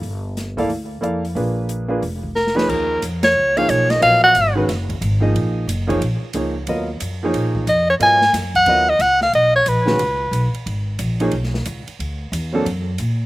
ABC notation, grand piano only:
X:1
M:4/4
L:1/8
Q:"Swing" 1/4=181
K:Bblyd
V:1 name="Grand piano"
z3 [B,EAdf] z2 [B,EAdf] z | [B,DF_A_c]3 [B,DFAc] z3 [F,B,_EA^c]- | [K:Ebm] [F,B,EA^c]2 z3 [F,B,EAd]3 | [G,CFBe]3 [E,A,DGc] z3 [F,B,EAe]- |
[F,B,EAe]2 z [F,B,EAd] z2 [F,B,EAd] z | [G,CFBe] z2 [F,B,EAd]3 z2 | [G,CFBe] z3 [G,CFBe] z3 | z3 [E,A,DGc] z4 |
z3 [F,B,EAd] z4 | z3 [^F,B,=C=D=A] z4 |]